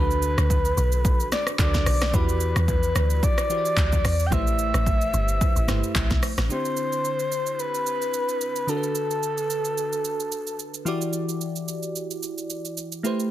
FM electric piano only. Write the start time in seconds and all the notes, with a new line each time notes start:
Already playing: D3 D4 F#4 A4 B4
1.59 D3 D4 F#4 A4 A#4
1.67 B4
2.12 E3 E4 F#4 G4 D5
3.50 E3 E4 F#4 G4 C5
3.58 D5
4.30 A3 E4 G4 B4 C5
5.68 A3 E4 G4 B4 C5
6.49 D3 C4 D4 E4 G4
8.67 D3 D4 F#4 A4 A#4
8.77 B4
10.85 E3 E4 F#4 G4 D5
13.03 A3 E4 G4 B4 C5